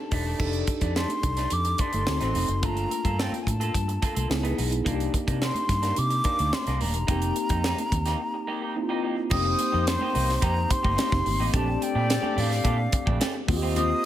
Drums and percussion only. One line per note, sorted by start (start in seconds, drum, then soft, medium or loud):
0.11 kick medium
0.11 open hi-hat medium
0.39 kick loud
0.39 crash medium
0.39 muted conga soft
0.39 low conga medium
0.53 closed hi-hat soft
0.67 kick medium
0.67 closed hi-hat medium
0.67 muted conga soft
0.81 kick medium
0.81 closed hi-hat soft
0.96 snare medium
0.96 muted conga soft
1.08 closed hi-hat soft
1.08 high conga medium
1.23 kick medium
1.23 closed hi-hat medium
1.23 muted conga soft
1.23 low conga medium
1.37 snare soft
1.37 closed hi-hat soft
1.50 closed hi-hat medium
1.50 muted conga soft
1.65 closed hi-hat soft
1.78 kick medium
1.78 closed hi-hat medium
1.78 muted conga soft
1.93 closed hi-hat medium
1.93 high conga medium
2.07 snare loud
2.07 muted conga soft
2.07 high conga soft
2.21 snare soft
2.21 closed hi-hat soft
2.35 open hi-hat medium
2.35 high conga medium
2.35 low conga medium
2.48 closed hi-hat medium
2.63 kick loud
2.63 closed hi-hat medium
2.63 muted conga soft
2.63 low conga medium
2.77 closed hi-hat medium
2.91 closed hi-hat medium
2.91 muted conga soft
3.05 kick medium
3.05 closed hi-hat soft
3.19 snare medium
3.19 muted conga soft
3.32 closed hi-hat soft
3.32 high conga medium
3.47 kick medium
3.47 closed hi-hat medium
3.47 low conga medium
3.61 closed hi-hat medium
3.74 kick medium
3.74 closed hi-hat medium
3.74 muted conga soft
3.89 closed hi-hat soft
4.02 kick loud
4.02 closed hi-hat medium
4.16 closed hi-hat medium
4.16 high conga medium
4.30 snare loud
4.30 muted conga soft
4.30 high conga soft
4.45 closed hi-hat soft
4.58 open hi-hat medium
4.58 high conga medium
4.58 low conga medium
4.72 closed hi-hat medium
4.86 kick loud
4.86 closed hi-hat medium
4.86 muted conga soft
4.86 low conga medium
5.00 closed hi-hat soft
5.14 kick medium
5.14 closed hi-hat medium
5.14 muted conga soft
5.28 kick medium
5.28 closed hi-hat medium
5.42 snare medium
5.54 closed hi-hat soft
5.54 high conga medium
5.69 kick medium
5.69 snare soft
5.69 closed hi-hat medium
5.69 muted conga soft
5.69 low conga medium
5.83 snare soft
5.83 closed hi-hat medium
5.96 closed hi-hat medium
5.96 muted conga soft
6.10 closed hi-hat soft
6.24 kick loud
6.24 closed hi-hat medium
6.39 closed hi-hat medium
6.39 high conga medium
6.53 snare loud
6.53 muted conga soft
6.53 high conga soft
6.67 snare soft
6.67 closed hi-hat soft
6.81 open hi-hat medium
6.81 muted conga soft
6.81 high conga medium
6.81 low conga soft
6.94 closed hi-hat medium
7.08 kick loud
7.08 closed hi-hat medium
7.08 muted conga soft
7.08 low conga medium
7.22 closed hi-hat soft
7.36 closed hi-hat medium
7.49 kick medium
7.49 closed hi-hat medium
7.64 snare loud
7.64 muted conga soft
7.77 closed hi-hat soft
7.77 high conga medium
7.92 kick medium
7.92 closed hi-hat medium
7.92 muted conga soft
7.92 low conga medium
8.06 snare soft
8.06 closed hi-hat medium
9.31 kick loud
9.31 crash medium
9.31 low conga medium
9.59 closed hi-hat medium
9.59 muted conga soft
9.87 snare loud
9.87 closed hi-hat medium
9.87 muted conga soft
10.00 high conga medium
10.15 open hi-hat medium
10.15 low conga medium
10.29 snare soft
10.42 kick medium
10.42 closed hi-hat medium
10.70 kick loud
10.70 closed hi-hat medium
10.70 muted conga soft
10.84 kick medium
10.84 high conga medium
10.98 snare loud
10.98 closed hi-hat medium
10.98 muted conga soft
10.98 high conga soft
11.12 kick loud
11.12 snare soft
11.26 open hi-hat medium
11.26 high conga medium
11.26 low conga medium
11.54 kick loud
11.54 closed hi-hat medium
11.54 low conga medium
11.82 closed hi-hat medium
11.82 muted conga soft
12.10 snare loud
12.10 closed hi-hat medium
12.23 high conga medium
12.38 open hi-hat medium
12.38 muted conga soft
12.38 low conga medium
12.51 snare soft
12.65 kick medium
12.65 closed hi-hat medium
12.92 kick loud
12.92 closed hi-hat medium
13.07 kick medium
13.07 high conga medium
13.21 snare loud
13.21 closed hi-hat medium
13.21 muted conga soft
13.21 high conga soft
13.48 kick loud
13.48 open hi-hat medium
13.48 high conga medium
13.48 low conga medium
13.76 closed hi-hat medium
13.76 muted conga soft
13.76 low conga medium